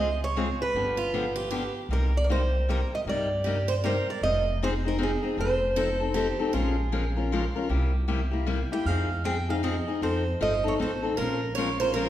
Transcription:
Already playing: upright bass C#2, steel-string acoustic guitar D#5
0.24 steel-string acoustic guitar C#5
0.36 steel-string acoustic guitar C#3 G#3 C4 F4 G#4
0.62 steel-string acoustic guitar B4
0.74 upright bass G1, steel-string acoustic guitar D3 F3 B3 D4 G4
0.97 steel-string acoustic guitar F4
1.14 steel-string acoustic guitar D3 F3 B3 D4 G4
1.36 steel-string acoustic guitar G4
1.51 steel-string acoustic guitar D3 F3 B3 D4 G4
1.89 upright bass C2, steel-string acoustic guitar C3 G3 A#3 D#4 G4
1.93 steel-string acoustic guitar A#4
2.17 steel-string acoustic guitar D5
2.24 steel-string acoustic guitar A#4
2.29 steel-string acoustic guitar C3 G3 A#3 D#4 G4 C5
2.69 steel-string acoustic guitar C3 G3 A#3 D#4 G4 A#4
2.95 steel-string acoustic guitar D#5
3.05 upright bass G2, steel-string acoustic guitar C3 G3 A#3 D#4 G4
3.09 steel-string acoustic guitar D5
3.44 steel-string acoustic guitar C3 G3 A#3 D#4 G4
3.68 steel-string acoustic guitar C5
3.84 steel-string acoustic guitar C3 G3 A#3 D#4 G4 A#4 C5
4.10 steel-string acoustic guitar D5
4.21 upright bass F1, steel-string acoustic guitar F3 C4 D#4 G#4 D#5
4.63 steel-string acoustic guitar F3 C4 D#4 G#4 C5
4.85 steel-string acoustic guitar C4 D#4 G#4 A#4
4.98 steel-string acoustic guitar F3 C4 D#4 G#4
5.03 steel-string acoustic guitar G#4
5.23 steel-string acoustic guitar C4 D#4 G#4
5.37 upright bass F1, steel-string acoustic guitar F3 C4 D#4 A4 C5
5.76 steel-string acoustic guitar F3 C4 D#4 A4
6.00 steel-string acoustic guitar C4 D#4 A4
6.14 steel-string acoustic guitar F3 C4 D#4 G4 A4
6.39 steel-string acoustic guitar C4 D#4 A4
6.53 upright bass A#1, steel-string acoustic guitar F3 G#3 C#4 F4 G#4 A#4
6.92 steel-string acoustic guitar F3 G#3 C#4 F4 A#4
7.17 steel-string acoustic guitar C#4 F4 A#4
7.32 steel-string acoustic guitar F3 G#3 C#4 F4 A#4
7.56 steel-string acoustic guitar C#4 F4 A#4
7.69 upright bass C2, steel-string acoustic guitar C3 G3 A#3 E4 G4
8.08 steel-string acoustic guitar C3 G3 A#3 E4 G4
8.31 steel-string acoustic guitar A#3 E4 G4
8.46 steel-string acoustic guitar C3 G3 A#3 E4 G4
8.72 steel-string acoustic guitar A#3 E4 G4 G5
8.85 upright bass F2, steel-string acoustic guitar F3 C4 D#4 G#4 F5
9.24 steel-string acoustic guitar F3 C4 D#4 G#4 G5
9.49 steel-string acoustic guitar C4 D#4 G#4 F5
9.63 steel-string acoustic guitar F3 C4 D#4 G#4 D#5
9.88 steel-string acoustic guitar C4 D#4 G#4
10.02 upright bass F2, steel-string acoustic guitar F3 C4 D#4 A4 C5
10.41 upright bass G1, steel-string acoustic guitar F3 C4 D#4 A4 D#5
10.64 steel-string acoustic guitar C4 D#4 A4
10.68 steel-string acoustic guitar C#5
10.79 upright bass A1, steel-string acoustic guitar F3 C4 D#4 A4 C5
11.03 steel-string acoustic guitar C4 D#4 A4
11.17 upright bass A#1, steel-string acoustic guitar F3 G#3 C#4 F4 A#4
11.55 steel-string acoustic guitar F3 G#3 C#4 F4 A#4 C#5
11.80 steel-string acoustic guitar C#4 F4 A#4 C5
11.94 steel-string acoustic guitar F3 G#3 C#4 F4 A#4

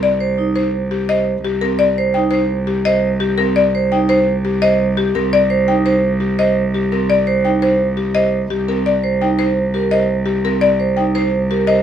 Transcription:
Already playing: cello C2
0.03 marimba D5
0.21 vibraphone C5
0.38 vibraphone D#4
0.56 marimba C5, vibraphone C5
0.91 marimba G4
1.09 vibraphone C5, marimba D#5
1.45 marimba G4
1.61 vibraphone C4, marimba A#4
1.79 marimba D5
1.98 vibraphone C5
2.14 vibraphone D#4, marimba G5
2.31 marimba C5, vibraphone C5
2.67 marimba G4
2.85 vibraphone C5, marimba D#5
3.20 marimba G4
3.38 vibraphone C4, marimba A#4
3.56 marimba D5
3.75 vibraphone C5
3.92 vibraphone D#4, marimba G5
4.09 marimba C5, vibraphone C5
4.45 marimba G4
4.62 vibraphone C5, marimba D#5
4.97 marimba G4
5.15 vibraphone C4, marimba A#4
5.33 marimba D5
5.50 vibraphone C5
5.68 vibraphone D#4, marimba G5
5.86 marimba C5, vibraphone C5
6.20 marimba G4
6.39 vibraphone C5, marimba D#5
6.74 marimba G4
6.92 vibraphone C4, marimba A#4
7.10 marimba D5
7.27 vibraphone C5
7.44 vibraphone D#4, marimba G5
7.62 marimba C5, vibraphone C5
7.97 marimba G4
8.15 vibraphone C5, marimba D#5
8.50 marimba G4
8.68 vibraphone C4, marimba A#4
8.86 marimba D5
9.04 vibraphone C5
9.21 vibraphone D#4, marimba G5
9.39 marimba C5, vibraphone C5
9.74 marimba G4, vibraphone A#4
9.91 vibraphone C5, marimba D#5
10.26 marimba G4
10.45 vibraphone C4, marimba A#4
10.61 marimba D5
10.80 vibraphone C5
10.97 vibraphone D#4, marimba G5
11.15 vibraphone C5, marimba C5
11.51 marimba G4, vibraphone A#4
11.67 vibraphone C5, marimba D#5

